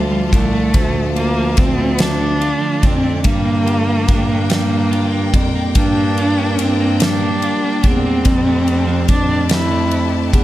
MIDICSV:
0, 0, Header, 1, 6, 480
1, 0, Start_track
1, 0, Tempo, 835422
1, 425, Time_signature, 6, 3, 24, 8
1, 5998, End_track
2, 0, Start_track
2, 0, Title_t, "String section"
2, 0, Program_c, 0, 48
2, 0, Note_on_c, 0, 65, 67
2, 0, Note_on_c, 0, 69, 66
2, 0, Note_on_c, 0, 74, 65
2, 0, Note_on_c, 0, 81, 70
2, 1844, Note_off_c, 0, 81, 0
2, 1846, Note_off_c, 0, 65, 0
2, 1847, Note_off_c, 0, 69, 0
2, 1879, Note_on_c, 0, 67, 70
2, 1880, Note_on_c, 0, 70, 66
2, 1890, Note_on_c, 0, 79, 84
2, 4729, Note_off_c, 0, 70, 0
2, 4733, Note_off_c, 0, 79, 0
2, 4750, Note_on_c, 0, 81, 80
2, 4752, Note_on_c, 0, 72, 68
2, 5998, Note_off_c, 0, 67, 0
2, 5998, Note_off_c, 0, 72, 0
2, 5998, Note_off_c, 0, 74, 0
2, 5998, Note_off_c, 0, 81, 0
2, 5998, End_track
3, 0, Start_track
3, 0, Title_t, "Cello"
3, 0, Program_c, 1, 42
3, 0, Note_on_c, 1, 55, 83
3, 189, Note_off_c, 1, 55, 0
3, 191, Note_on_c, 1, 57, 98
3, 645, Note_off_c, 1, 57, 0
3, 671, Note_on_c, 1, 58, 93
3, 913, Note_on_c, 1, 60, 92
3, 921, Note_off_c, 1, 58, 0
3, 1151, Note_on_c, 1, 62, 103
3, 1160, Note_off_c, 1, 60, 0
3, 1636, Note_on_c, 1, 60, 95
3, 1644, Note_off_c, 1, 62, 0
3, 1870, Note_off_c, 1, 60, 0
3, 1875, Note_on_c, 1, 58, 102
3, 2567, Note_off_c, 1, 58, 0
3, 2602, Note_on_c, 1, 58, 82
3, 3050, Note_off_c, 1, 58, 0
3, 3314, Note_on_c, 1, 62, 93
3, 3803, Note_on_c, 1, 60, 82
3, 3812, Note_off_c, 1, 62, 0
3, 4042, Note_on_c, 1, 62, 95
3, 4051, Note_off_c, 1, 60, 0
3, 4524, Note_on_c, 1, 60, 105
3, 4533, Note_off_c, 1, 62, 0
3, 5234, Note_off_c, 1, 60, 0
3, 5236, Note_on_c, 1, 62, 95
3, 5453, Note_off_c, 1, 62, 0
3, 5480, Note_on_c, 1, 64, 98
3, 5928, Note_off_c, 1, 64, 0
3, 5998, End_track
4, 0, Start_track
4, 0, Title_t, "Clean electric guitar"
4, 0, Program_c, 2, 27
4, 0, Note_on_c, 2, 50, 79
4, 0, Note_on_c, 2, 53, 63
4, 0, Note_on_c, 2, 57, 55
4, 0, Note_on_c, 2, 62, 61
4, 0, Note_on_c, 2, 65, 69
4, 66, Note_off_c, 2, 53, 0
4, 69, Note_on_c, 2, 53, 66
4, 182, Note_off_c, 2, 62, 0
4, 184, Note_on_c, 2, 62, 57
4, 304, Note_off_c, 2, 57, 0
4, 311, Note_on_c, 2, 57, 52
4, 426, Note_off_c, 2, 50, 0
4, 429, Note_on_c, 2, 50, 77
4, 548, Note_off_c, 2, 57, 0
4, 666, Note_off_c, 2, 65, 0
4, 668, Note_on_c, 2, 65, 64
4, 786, Note_off_c, 2, 53, 0
4, 788, Note_on_c, 2, 53, 66
4, 905, Note_off_c, 2, 62, 0
4, 907, Note_on_c, 2, 62, 61
4, 1024, Note_on_c, 2, 57, 64
4, 1143, Note_off_c, 2, 50, 0
4, 1145, Note_on_c, 2, 50, 83
4, 1258, Note_off_c, 2, 57, 0
4, 1265, Note_on_c, 2, 57, 65
4, 1383, Note_off_c, 2, 65, 0
4, 1385, Note_on_c, 2, 65, 73
4, 1497, Note_off_c, 2, 53, 0
4, 1499, Note_on_c, 2, 53, 69
4, 1616, Note_off_c, 2, 62, 0
4, 1619, Note_on_c, 2, 62, 59
4, 1736, Note_off_c, 2, 57, 0
4, 1742, Note_on_c, 2, 57, 58
4, 1859, Note_off_c, 2, 53, 0
4, 1862, Note_on_c, 2, 55, 74
4, 1912, Note_off_c, 2, 57, 0
4, 1983, Note_on_c, 2, 58, 60
4, 2104, Note_off_c, 2, 65, 0
4, 2106, Note_on_c, 2, 65, 69
4, 2221, Note_off_c, 2, 58, 0
4, 2228, Note_on_c, 2, 58, 63
4, 2344, Note_off_c, 2, 62, 0
4, 2346, Note_on_c, 2, 62, 67
4, 2458, Note_off_c, 2, 58, 0
4, 2465, Note_on_c, 2, 58, 62
4, 2577, Note_off_c, 2, 55, 0
4, 2584, Note_on_c, 2, 55, 82
4, 2693, Note_off_c, 2, 58, 0
4, 2699, Note_on_c, 2, 58, 60
4, 2821, Note_off_c, 2, 65, 0
4, 2824, Note_on_c, 2, 65, 77
4, 2932, Note_off_c, 2, 58, 0
4, 2939, Note_on_c, 2, 58, 64
4, 3062, Note_off_c, 2, 62, 0
4, 3064, Note_on_c, 2, 62, 55
4, 3156, Note_off_c, 2, 50, 0
4, 3182, Note_off_c, 2, 58, 0
4, 3190, Note_on_c, 2, 58, 56
4, 3304, Note_off_c, 2, 55, 0
4, 3311, Note_on_c, 2, 55, 86
4, 3424, Note_off_c, 2, 58, 0
4, 3431, Note_on_c, 2, 58, 60
4, 3550, Note_off_c, 2, 65, 0
4, 3552, Note_on_c, 2, 65, 67
4, 3664, Note_off_c, 2, 58, 0
4, 3671, Note_on_c, 2, 58, 67
4, 3787, Note_off_c, 2, 62, 0
4, 3790, Note_on_c, 2, 62, 56
4, 3904, Note_off_c, 2, 58, 0
4, 3911, Note_on_c, 2, 58, 57
4, 4027, Note_off_c, 2, 55, 0
4, 4036, Note_on_c, 2, 55, 75
4, 4144, Note_off_c, 2, 58, 0
4, 4151, Note_on_c, 2, 58, 62
4, 4269, Note_off_c, 2, 65, 0
4, 4271, Note_on_c, 2, 65, 65
4, 4384, Note_off_c, 2, 58, 0
4, 4391, Note_on_c, 2, 58, 57
4, 4505, Note_off_c, 2, 62, 0
4, 4508, Note_on_c, 2, 62, 51
4, 4624, Note_off_c, 2, 58, 0
4, 4631, Note_on_c, 2, 58, 55
4, 4745, Note_on_c, 2, 41, 77
4, 4795, Note_off_c, 2, 58, 0
4, 4798, Note_off_c, 2, 55, 0
4, 4865, Note_on_c, 2, 57, 59
4, 5097, Note_on_c, 2, 53, 67
4, 5224, Note_off_c, 2, 62, 0
4, 5226, Note_on_c, 2, 62, 62
4, 5338, Note_off_c, 2, 57, 0
4, 5344, Note_on_c, 2, 57, 57
4, 5464, Note_off_c, 2, 41, 0
4, 5573, Note_off_c, 2, 57, 0
4, 5580, Note_on_c, 2, 57, 60
4, 5820, Note_off_c, 2, 53, 0
4, 5928, Note_off_c, 2, 62, 0
4, 5935, Note_on_c, 2, 62, 51
4, 5998, Note_off_c, 2, 57, 0
4, 5998, Note_off_c, 2, 62, 0
4, 5998, Note_off_c, 2, 65, 0
4, 5998, End_track
5, 0, Start_track
5, 0, Title_t, "Bass clarinet"
5, 0, Program_c, 3, 71
5, 0, Note_on_c, 3, 38, 94
5, 165, Note_off_c, 3, 38, 0
5, 186, Note_on_c, 3, 36, 88
5, 411, Note_off_c, 3, 36, 0
5, 424, Note_on_c, 3, 38, 100
5, 882, Note_off_c, 3, 38, 0
5, 906, Note_on_c, 3, 38, 90
5, 1447, Note_off_c, 3, 38, 0
5, 1627, Note_on_c, 3, 41, 86
5, 1852, Note_off_c, 3, 41, 0
5, 1865, Note_on_c, 3, 43, 103
5, 2322, Note_off_c, 3, 43, 0
5, 2347, Note_on_c, 3, 43, 100
5, 3043, Note_off_c, 3, 43, 0
5, 3064, Note_on_c, 3, 41, 91
5, 3290, Note_off_c, 3, 41, 0
5, 3307, Note_on_c, 3, 43, 104
5, 3763, Note_off_c, 3, 43, 0
5, 3789, Note_on_c, 3, 43, 91
5, 4328, Note_off_c, 3, 43, 0
5, 4503, Note_on_c, 3, 40, 87
5, 4729, Note_off_c, 3, 40, 0
5, 4742, Note_on_c, 3, 41, 103
5, 5200, Note_off_c, 3, 41, 0
5, 5220, Note_on_c, 3, 41, 96
5, 5918, Note_off_c, 3, 41, 0
5, 5937, Note_on_c, 3, 40, 94
5, 5998, Note_off_c, 3, 40, 0
5, 5998, End_track
6, 0, Start_track
6, 0, Title_t, "Drums"
6, 188, Note_on_c, 9, 36, 88
6, 193, Note_on_c, 9, 51, 55
6, 246, Note_off_c, 9, 36, 0
6, 251, Note_off_c, 9, 51, 0
6, 425, Note_on_c, 9, 51, 69
6, 427, Note_on_c, 9, 36, 95
6, 482, Note_off_c, 9, 51, 0
6, 485, Note_off_c, 9, 36, 0
6, 668, Note_on_c, 9, 51, 40
6, 726, Note_off_c, 9, 51, 0
6, 901, Note_on_c, 9, 51, 60
6, 907, Note_on_c, 9, 36, 90
6, 959, Note_off_c, 9, 51, 0
6, 964, Note_off_c, 9, 36, 0
6, 1141, Note_on_c, 9, 51, 78
6, 1151, Note_on_c, 9, 38, 116
6, 1198, Note_off_c, 9, 51, 0
6, 1208, Note_off_c, 9, 38, 0
6, 1388, Note_on_c, 9, 51, 43
6, 1445, Note_off_c, 9, 51, 0
6, 1626, Note_on_c, 9, 51, 56
6, 1627, Note_on_c, 9, 36, 83
6, 1683, Note_off_c, 9, 51, 0
6, 1684, Note_off_c, 9, 36, 0
6, 1862, Note_on_c, 9, 51, 71
6, 1867, Note_on_c, 9, 36, 90
6, 1920, Note_off_c, 9, 51, 0
6, 1924, Note_off_c, 9, 36, 0
6, 2111, Note_on_c, 9, 51, 40
6, 2168, Note_off_c, 9, 51, 0
6, 2346, Note_on_c, 9, 51, 59
6, 2348, Note_on_c, 9, 36, 88
6, 2404, Note_off_c, 9, 51, 0
6, 2405, Note_off_c, 9, 36, 0
6, 2584, Note_on_c, 9, 51, 70
6, 2594, Note_on_c, 9, 38, 103
6, 2641, Note_off_c, 9, 51, 0
6, 2652, Note_off_c, 9, 38, 0
6, 2831, Note_on_c, 9, 51, 41
6, 2888, Note_off_c, 9, 51, 0
6, 3066, Note_on_c, 9, 36, 79
6, 3067, Note_on_c, 9, 51, 57
6, 3124, Note_off_c, 9, 36, 0
6, 3125, Note_off_c, 9, 51, 0
6, 3304, Note_on_c, 9, 51, 73
6, 3307, Note_on_c, 9, 36, 96
6, 3361, Note_off_c, 9, 51, 0
6, 3364, Note_off_c, 9, 36, 0
6, 3548, Note_on_c, 9, 51, 40
6, 3606, Note_off_c, 9, 51, 0
6, 3784, Note_on_c, 9, 51, 62
6, 3842, Note_off_c, 9, 51, 0
6, 4022, Note_on_c, 9, 51, 71
6, 4033, Note_on_c, 9, 38, 115
6, 4080, Note_off_c, 9, 51, 0
6, 4090, Note_off_c, 9, 38, 0
6, 4265, Note_on_c, 9, 51, 44
6, 4322, Note_off_c, 9, 51, 0
6, 4502, Note_on_c, 9, 51, 54
6, 4504, Note_on_c, 9, 36, 79
6, 4559, Note_off_c, 9, 51, 0
6, 4561, Note_off_c, 9, 36, 0
6, 4739, Note_on_c, 9, 51, 69
6, 4743, Note_on_c, 9, 36, 96
6, 4797, Note_off_c, 9, 51, 0
6, 4801, Note_off_c, 9, 36, 0
6, 4985, Note_on_c, 9, 51, 39
6, 5042, Note_off_c, 9, 51, 0
6, 5219, Note_on_c, 9, 51, 64
6, 5222, Note_on_c, 9, 36, 85
6, 5277, Note_off_c, 9, 51, 0
6, 5279, Note_off_c, 9, 36, 0
6, 5454, Note_on_c, 9, 51, 74
6, 5465, Note_on_c, 9, 38, 109
6, 5512, Note_off_c, 9, 51, 0
6, 5522, Note_off_c, 9, 38, 0
6, 5696, Note_on_c, 9, 51, 42
6, 5753, Note_off_c, 9, 51, 0
6, 5938, Note_on_c, 9, 36, 85
6, 5939, Note_on_c, 9, 51, 55
6, 5995, Note_off_c, 9, 36, 0
6, 5997, Note_off_c, 9, 51, 0
6, 5998, End_track
0, 0, End_of_file